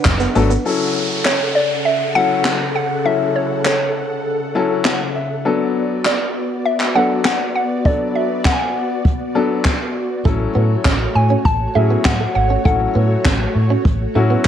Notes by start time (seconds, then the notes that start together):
Already playing: D4 B4 F#5
0.05 F#1, kick, snare, clap, shaker
0.20 B3, closed hi-hat, shaker
0.35 G#1 F#3 A3 B3 D4 A4, muted clean electric guitar stroke, open hi-hat, shaker
0.50 B3, closed hi-hat, shaker
0.65 C#3 F#3 C#4 E4 A4 F#5, downlifter
1.25 C#5, snare, clap
1.55 D5
1.85 E5
2.15 F#3 C#4 E4 A4 F#5
2.45 snare, clap
2.75 F#5
3.05 F#3 C#4 E4 A4 E5
3.36 C#5
3.65 C#5, snare, clap
4.55 F#3 C#4 E4 A4 A5
4.85 F#5, snare, clap
5.15 E5
5.45 F#3 B3 D4 F#4 A4 D5
6.05 D5, snare, clap
6.65 E5
6.80 clap
6.95 F#3 B3 D4 A4 F#5
7.25 F#5, snare, clap
7.55 F#5
7.85 F#3 B3 D4 A4 D5, kick
8.15 E5
8.45 F#5, kick, snare, clap
8.52 G#5
8.59 F#5
9.05 kick
9.35 F#3 B3 D4 A4
9.65 kick, snare, clap
10.25 A1 F#3 A3 C#4 E4 A4 C#5, kick
10.40 muted clean electric guitar stroke
10.55 A2 B3
10.85 A1 C#4, kick, snare, clap
11.00 muted clean electric guitar stroke
11.15 A2 G#5
11.30 C#4
11.45 A1 A5, muted clean electric guitar stroke, kick
11.75 A2 F#3 A3 C#4 E4 G#4 E5
11.90 B3
12.05 A2 F#5, kick, snare, clap
12.20 A3
12.35 G#1 F#5, muted clean electric guitar stroke
12.50 C#4
12.65 A1 F#3 A3 C#4 E4 A4 F#5, kick
12.80 muted clean electric guitar stroke
12.95 A2 B3
13.25 A1 C#4, kick, snare, clap
13.40 muted clean electric guitar stroke
13.55 A2
13.70 C#4
13.85 A1, muted clean electric guitar stroke, kick
14.15 A2 F#3 A3 C#4 E4 F#4
14.30 B3